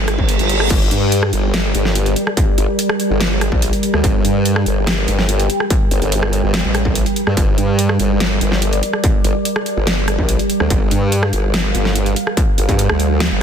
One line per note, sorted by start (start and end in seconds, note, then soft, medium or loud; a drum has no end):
0.00 0.38 G1 loud
0.00 13.43 G3 medium
0.00 13.43 G4 medium
0.00 13.43 A#4 medium
0.00 0.69 G5 medium
0.00 reverse cymbal medium
0.08 cross-stick medium
0.08 closed hi-hat medium
0.19 kick medium
0.29 closed hi-hat medium
0.39 0.69 G1 loud
0.39 closed hi-hat soft
0.49 closed hi-hat medium
0.60 cross-stick medium
0.70 0.90 G1 loud
0.70 4.03 D5 medium
0.70 kick loud
0.70 closed hi-hat medium
0.70 crash medium
0.91 1.31 G2 loud
0.91 closed hi-hat medium
1.12 closed hi-hat medium
1.23 cross-stick medium
1.33 1.73 G1 loud
1.33 closed hi-hat medium
1.54 snare loud
1.54 closed hi-hat medium
1.75 2.15 G1 loud
1.75 closed hi-hat medium
1.85 snare soft
1.95 closed hi-hat medium
2.06 closed hi-hat soft
2.16 closed hi-hat medium
2.27 cross-stick medium
2.37 kick loud
2.37 closed hi-hat medium
2.58 2.67 G1 loud
2.58 closed hi-hat medium
2.79 closed hi-hat medium
2.89 cross-stick medium
3.00 closed hi-hat medium
3.10 3.50 G1 loud
3.20 snare loud
3.20 closed hi-hat medium
3.41 cross-stick medium
3.41 closed hi-hat medium
3.52 3.71 A#1 medium
3.52 kick medium
3.62 closed hi-hat medium
3.73 closed hi-hat soft
3.83 closed hi-hat medium
3.94 4.02 D2 loud
3.94 cross-stick medium
4.04 4.23 G1 loud
4.04 7.36 G5 loud
4.04 kick loud
4.04 closed hi-hat medium
4.25 4.65 G2 loud
4.25 closed hi-hat medium
4.45 closed hi-hat medium
4.56 cross-stick medium
4.66 5.06 G1 loud
4.66 closed hi-hat medium
4.87 snare loud
4.87 closed hi-hat medium
5.08 5.48 G1 loud
5.08 closed hi-hat medium
5.19 snare soft
5.29 closed hi-hat medium
5.39 closed hi-hat soft
5.50 closed hi-hat medium
5.60 cross-stick medium
5.70 kick loud
5.70 closed hi-hat medium
5.91 6.00 G1 loud
5.91 closed hi-hat medium
6.02 6.42 G1 loud
6.02 closed hi-hat soft
6.12 closed hi-hat medium
6.23 cross-stick medium
6.33 closed hi-hat medium
6.44 6.63 G1 loud
6.54 snare loud
6.54 closed hi-hat medium
6.64 7.04 A1 loud
6.75 cross-stick medium
6.75 closed hi-hat medium
6.85 kick medium
6.95 closed hi-hat medium
7.06 closed hi-hat soft
7.16 closed hi-hat medium
7.27 7.35 G2 loud
7.27 cross-stick medium
7.37 7.56 G1 loud
7.37 10.69 D5 medium
7.37 kick loud
7.37 closed hi-hat medium
7.58 7.98 G2 loud
7.58 closed hi-hat medium
7.79 closed hi-hat medium
7.89 cross-stick medium
8.00 8.40 G1 medium
8.00 closed hi-hat medium
8.20 snare loud
8.20 closed hi-hat medium
8.41 8.81 G1 loud
8.41 closed hi-hat medium
8.52 snare soft
8.62 closed hi-hat medium
8.73 closed hi-hat soft
8.83 closed hi-hat medium
8.93 cross-stick medium
9.04 kick loud
9.04 closed hi-hat medium
9.24 9.33 G1 loud
9.24 closed hi-hat medium
9.45 closed hi-hat medium
9.56 cross-stick medium
9.66 closed hi-hat medium
9.77 10.17 G1 loud
9.87 snare loud
9.87 closed hi-hat medium
10.08 cross-stick medium
10.08 closed hi-hat medium
10.19 10.38 A#1 loud
10.19 kick medium
10.29 closed hi-hat medium
10.39 closed hi-hat soft
10.50 closed hi-hat medium
10.60 10.69 D2 loud
10.60 cross-stick medium
10.70 10.90 G1 loud
10.70 13.43 F5 loud
10.70 kick loud
10.70 closed hi-hat medium
10.91 11.31 G2 loud
10.91 closed hi-hat medium
11.12 closed hi-hat medium
11.23 cross-stick medium
11.33 11.73 G1 loud
11.33 closed hi-hat medium
11.54 snare loud
11.54 closed hi-hat medium
11.75 12.15 G1 loud
11.75 closed hi-hat medium
11.85 snare soft
11.96 closed hi-hat medium
12.06 closed hi-hat soft
12.16 closed hi-hat medium
12.27 cross-stick medium
12.37 kick loud
12.37 closed hi-hat medium
12.58 12.67 G1 loud
12.58 closed hi-hat medium
12.69 12.88 G2 medium
12.69 kick medium
12.69 closed hi-hat soft
12.79 closed hi-hat medium
12.89 13.29 D2 loud
12.89 cross-stick medium
13.00 closed hi-hat medium
13.20 snare loud
13.20 closed hi-hat medium
13.31 13.43 G1 loud